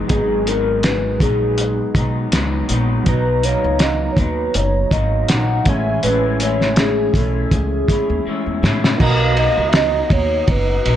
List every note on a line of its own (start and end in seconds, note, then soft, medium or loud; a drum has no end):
0.07 1.17 G#1 medium
0.07 0.45 G#2 medium
0.07 3.02 F#3 medium
0.07 0.46 F#3 medium
0.07 3.02 B3 soft
0.07 0.47 B3 medium
0.07 0.47 D#4 medium
0.07 3.03 D#4 soft
0.07 0.49 G#4 loud
0.07 kick medium
0.07 closed hi-hat medium
0.12 3.04 G#4 medium
0.46 1.19 G#2 medium
0.46 1.21 F#3 medium
0.46 1.22 B3 medium
0.46 1.23 D#4 medium
0.46 0.86 A#4 loud
0.46 closed hi-hat medium
0.83 1.24 B4 loud
0.83 snare loud
0.83 closed hi-hat medium
1.20 1.80 A#1 medium
1.20 1.93 G#2 medium
1.20 1.95 F#3 medium
1.20 1.96 B3 medium
1.20 1.97 D#4 medium
1.20 2.33 G#4 loud
1.20 kick loud
1.20 closed hi-hat medium
1.58 closed hi-hat medium
1.95 2.25 B1 medium
1.95 2.30 G#2 soft
1.95 2.32 F#3 medium
1.95 2.32 B3 medium
1.95 2.34 D#4 medium
1.95 kick medium
1.95 closed hi-hat medium
2.32 2.62 C#2 medium
2.32 2.67 G#2 medium
2.32 2.69 F#3 medium
2.32 2.70 B3 medium
2.32 2.71 D#4 medium
2.32 snare loud
2.32 closed hi-hat loud
2.69 2.99 A#1 medium
2.69 3.06 G#2 medium
2.69 3.06 F#3 medium
2.69 3.07 B3 medium
2.69 3.07 D#4 medium
2.69 closed hi-hat medium
3.04 3.53 B1 medium
3.04 3.42 B2 medium
3.04 5.61 F#3 medium
3.04 3.43 F#3 medium
3.04 5.62 B3 medium
3.04 5.63 D#4 medium
3.04 kick medium
3.04 closed hi-hat medium
3.08 3.45 D#4 medium
3.08 3.46 B4 loud
3.08 5.63 A#5 medium
3.43 4.15 B2 medium
3.43 4.16 F#3 medium
3.43 4.19 A#3 medium
3.43 4.18 D#4 medium
3.43 3.84 C#5 loud
3.43 closed hi-hat medium
3.64 4.07 C#2 medium
3.79 4.11 D#5 medium
3.79 snare medium
3.79 closed hi-hat medium
4.12 4.20 C#5 medium
4.16 4.47 D#2 medium
4.16 4.90 B2 medium
4.16 4.91 F#3 medium
4.16 4.93 D#4 medium
4.16 4.57 B4 loud
4.16 kick loud
4.16 closed hi-hat medium
4.54 4.85 F#1 loud
4.54 4.93 C#5 loud
4.54 closed hi-hat medium
4.91 5.22 G#1 medium
4.91 5.29 B2 medium
4.91 5.28 F#3 medium
4.91 5.28 A#3 medium
4.91 5.29 D#4 medium
4.91 5.28 D#5 loud
4.91 kick medium
4.91 closed hi-hat medium
5.28 5.59 A#1 medium
5.28 5.66 F#3 medium
5.28 5.67 A#3 medium
5.28 5.67 D#4 medium
5.28 5.69 F#5 loud
5.28 snare medium
5.28 closed hi-hat loud
5.64 5.96 A1 medium
5.64 6.02 A2 medium
5.64 8.58 E3 medium
5.64 6.03 G#3 medium
5.64 8.59 A3 medium
5.64 8.60 C#4 medium
5.64 6.04 C#4 medium
5.64 6.04 E5 loud
5.64 kick loud
5.64 closed hi-hat medium
5.69 6.04 E4 medium
5.69 8.61 G#5 medium
6.03 7.11 A1 medium
6.03 6.39 A2 medium
6.03 6.40 G#3 medium
6.03 6.41 C#4 medium
6.03 6.42 E4 medium
6.03 6.38 B4 loud
6.03 closed hi-hat medium
6.40 7.12 A2 medium
6.40 7.15 G#3 medium
6.40 7.15 C#4 medium
6.40 7.15 E4 medium
6.40 6.76 C#5 loud
6.40 closed hi-hat medium
6.61 snare soft
6.76 7.18 G#4 medium
6.76 snare loud
6.76 closed hi-hat medium
7.14 7.44 B1 medium
7.14 7.87 A2 medium
7.14 7.89 C#4 medium
7.14 7.90 E4 medium
7.14 7.52 A4 medium
7.14 kick medium
7.14 closed hi-hat medium
7.51 7.82 C#2 medium
7.51 8.60 G#4 loud
7.51 kick medium
7.51 closed hi-hat medium
7.88 8.24 A2 medium
7.88 8.26 G#3 medium
7.88 8.27 C#4 medium
7.88 8.27 E4 medium
7.88 kick loud
7.88 closed hi-hat medium
8.10 8.23 D#2 medium
8.26 8.61 A2 medium
8.26 8.62 G#3 medium
8.26 8.63 C#4 medium
8.26 8.64 E4 medium
8.26 muted upright bass stroke soft
8.46 8.64 E2 medium
8.62 9.00 A2 medium
8.62 8.93 A2 medium
8.62 9.00 G#3 medium
8.62 9.01 C#4 medium
8.62 9.01 E4 medium
8.62 snare medium
8.84 snare medium
8.97 9.46 B1 loud
8.97 9.57 B2 medium
8.97 9.58 F#3 medium
8.97 10.96 B3 medium
8.97 10.96 D#4 medium
8.97 10.96 F#4 medium
8.97 10.96 A#5 medium
8.97 kick loud
8.97 crash loud
9.01 9.58 A#3 medium
9.01 9.55 D#4 medium
9.01 9.35 A#4 loud
9.01 10.96 D#5 medium
9.37 9.67 D#5 loud
9.37 ride medium
9.57 10.01 C#2 medium
9.57 10.84 F#3 soft
9.57 10.85 D#4 soft
9.69 9.78 E5 medium
9.69 ride medium
9.74 10.14 D#5 loud
9.74 snare loud
10.10 10.41 D#2 loud
10.10 10.49 C#5 loud
10.10 kick loud
10.10 ride medium
10.48 10.78 F#1 medium
10.48 10.96 B4 loud
10.48 kick medium
10.48 ride medium
10.85 10.96 A#1 medium
10.85 10.96 F#3 medium
10.85 10.96 D#4 medium
10.85 ride medium